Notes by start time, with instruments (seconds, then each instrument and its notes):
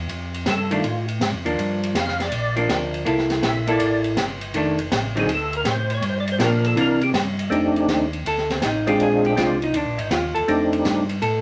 0.09 tonewheel organ F2, ride
0.34 ride
0.46 tonewheel organ G2, snare, hi-hat pedal, ride
0.50 tonewheel organ A4
0.71 hollow-body jazz guitar D#3 A3 D4, tonewheel organ F4, ride
0.83 tonewheel organ A2, ride
1.08 ride
1.21 tonewheel organ G#2, snare, hi-hat pedal, ride
1.33 tonewheel organ F2
1.45 tonewheel organ D#2, hollow-body jazz guitar F3 A#3 D4, ride
1.58 tonewheel organ G2, ride
1.83 ride
1.94 tonewheel organ F2, snare, hi-hat pedal, ride
2.00 tonewheel organ F5
2.08 snare
2.20 tonewheel organ D5, snare, ride
2.32 tonewheel organ A#1, ride
2.56 hollow-body jazz guitar F3 A#3 D4, ride
2.68 tonewheel organ D2, snare, hi-hat pedal, ride
2.94 ride
3.05 tonewheel organ C2, hollow-body jazz guitar A#3 E4 A4, ride
3.18 snare
3.30 snare, ride
3.43 tonewheel organ A#1, snare, hi-hat pedal, ride
3.47 tonewheel organ E5
3.67 hollow-body jazz guitar A#3 E4 A4, tonewheel organ D5, ride
3.80 tonewheel organ A1, ride
4.04 ride
4.16 tonewheel organ G1, snare, hi-hat pedal, ride
4.41 ride
4.54 tonewheel organ F1, hollow-body jazz guitar D#3 A3 D4, ride
4.79 ride
4.91 tonewheel organ A1, snare, hi-hat pedal, ride
5.15 hollow-body jazz guitar D3 F#3 C4 D#4, tonewheel organ G#4, ride
5.27 tonewheel organ D2, ride
5.35 tonewheel organ A4
5.53 tonewheel organ A#4, ride
5.64 tonewheel organ A2, snare, hi-hat pedal, ride
5.71 tonewheel organ C5
5.90 ride
5.94 tonewheel organ C#5
6.02 tonewheel organ G2, ride
6.09 tonewheel organ C5
6.20 tonewheel organ D5
6.27 ride
6.32 tonewheel organ C5
6.38 tonewheel organ A#2, hollow-body jazz guitar F3 A#3 D4, snare, hi-hat pedal, ride
6.44 tonewheel organ A#4
6.64 tonewheel organ A4, ride
6.76 tonewheel organ C3, hollow-body jazz guitar E3 A#3 D4, ride
6.81 tonewheel organ A#4
7.01 tonewheel organ G4, ride
7.14 tonewheel organ G2, snare, hi-hat pedal, ride
7.39 ride
7.50 tonewheel organ F2 A3 C4 D4 D#4 G4, ride
7.76 ride
7.88 tonewheel organ D#2, snare, hi-hat pedal, ride
8.13 ride
8.25 tonewheel organ D2, hollow-body jazz guitar A4, ride
8.38 snare
8.50 hollow-body jazz guitar C4, snare, ride
8.62 tonewheel organ A1, hollow-body jazz guitar D#4, snare, hi-hat pedal, ride
8.87 tonewheel organ G#3 C4 D4 F4 G#4, hollow-body jazz guitar G4, ride
8.99 tonewheel organ A#1, hollow-body jazz guitar G#4, ride
9.24 hollow-body jazz guitar G4, ride
9.36 tonewheel organ C2 G#3 C4 D4 F4 G4, hollow-body jazz guitar F4, snare, hi-hat pedal, ride
9.62 hollow-body jazz guitar D#4, ride
9.73 tonewheel organ D2, hollow-body jazz guitar D4, ride
9.85 tonewheel organ A#1
9.98 tonewheel organ G#1, hollow-body jazz guitar D#4, ride
10.11 tonewheel organ D#2, hollow-body jazz guitar F4, snare, hi-hat pedal, ride
10.35 tonewheel organ D#2, hollow-body jazz guitar A4, ride
10.48 tonewheel organ F2 A3 C4 D4 D#4 G4, ride
10.73 ride
10.85 tonewheel organ G2, snare, hi-hat pedal, ride
11.09 ride
11.22 tonewheel organ A2, hollow-body jazz guitar A4, ride